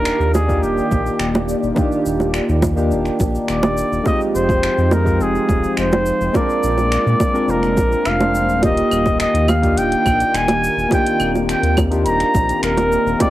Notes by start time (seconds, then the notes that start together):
Already playing: D#1 D#3 A#3 D4 D#4 F4 G4 A#4 D5
0.05 finger snap, shaker
0.20 D#2, shaker
0.34 G#4, high bongo, shaker
0.48 A#3 D4 D#4 F4 G4, kick, shaker
0.63 D#1 G4, shaker
0.78 shaker
0.91 A#1, kick, high bongo, shaker
1.06 shaker
1.19 D#1, finger snap, shaker
1.35 high bongo, shaker
1.49 shaker
1.63 D#1, shaker
1.74 A#3 D4 D#4 F4 G4, kick, high bongo, shaker
1.92 shaker
2.06 D#1, shaker
2.20 high bongo, shaker
2.34 finger snap, shaker
2.49 D#2, shaker
2.62 kick, high bongo, shaker
2.76 A#3 D4 D#4 F4 G4, shaker
2.91 D#1, shaker
3.05 finger snap, shaker
3.20 A#1, kick, high bongo, shaker
3.35 shaker
3.48 D#1 D5, finger snap, shaker
3.63 high bongo, shaker
3.78 shaker
3.92 D#1, shaker
4.04 F3 G#3 C4 D#4 F4 G4 D#5 G5, kick, high bongo, shaker
4.21 shaker
4.35 F1 C5, shaker
4.49 kick, high bongo, shaker
4.63 finger snap, shaker
4.78 F2, shaker
4.91 A#4, high bongo, shaker
5.04 G#3 C4 D#4 F4 G4, kick, shaker
5.21 F1 G#4, shaker
5.35 shaker
5.49 D#1, kick, high bongo, shaker
5.64 shaker
5.77 F1 C5, finger snap, shaker
5.92 high bongo, shaker
6.06 shaker
6.21 F1, shaker
6.32 G#3 A#3 C4 D4 F4 A#4 D5, kick, high bongo, shaker
6.50 shaker
6.63 A#1, shaker
6.78 high bongo, shaker
6.92 finger snap, shaker
7.07 A#2, shaker
7.20 kick, high bongo, shaker
7.33 G#3 C4 D4 F4 A#4, shaker
7.48 F1 A#4, shaker
7.63 finger snap, shaker
7.77 A#1, kick, high bongo, shaker
7.92 shaker
8.05 F1 F5, finger snap, shaker
8.19 G#3 C4 D4 F4 C5, high bongo, shaker
8.35 shaker
8.49 D#1, shaker
8.61 D#3 A#3 D#4 F4 G4 A#4 D#5, kick, closed hi-hat, high bongo, shaker
8.77 closed hi-hat, shaker
8.91 D#1, claves, shaker
9.06 kick, high bongo, shaker
9.20 D#5, finger snap, closed hi-hat, shaker
9.34 D#2, closed hi-hat, shaker
9.48 F5, high bongo, claves, shaker
9.62 A#3 D4 D#4 F4 G4, kick, closed hi-hat, shaker
9.77 D#1 G5, closed hi-hat, shaker
9.92 closed hi-hat, shaker
10.06 A#1, kick, high bongo, claves, shaker
10.20 closed hi-hat, shaker
10.34 D#1 G#5, finger snap, closed hi-hat, shaker
10.48 closed hi-hat, high bongo, shaker
10.64 shaker
10.77 D#1, shaker
10.89 A#3 C4 D4 D#4 F4 G4, kick, closed hi-hat, high bongo
10.93 G5, shaker
11.07 closed hi-hat, shaker
11.20 D#1, claves, shaker
11.35 high bongo, shaker
11.49 G5, finger snap, closed hi-hat, shaker
11.63 D#2, closed hi-hat, shaker
11.77 kick, high bongo, claves, shaker
11.90 A#3 D4 D#4 F4 G4, closed hi-hat, shaker
12.06 D#1 A#5, closed hi-hat, shaker
12.20 finger snap, closed hi-hat, shaker
12.35 A#1, kick, high bongo, shaker
12.49 closed hi-hat, shaker
12.62 D#1 A#4, finger snap, closed hi-hat, shaker
12.77 closed hi-hat, high bongo, shaker
12.92 shaker
13.06 D#1, shaker
13.19 F3 G#3 C4 D#4 F4 G4 D5, kick, closed hi-hat, high bongo, shaker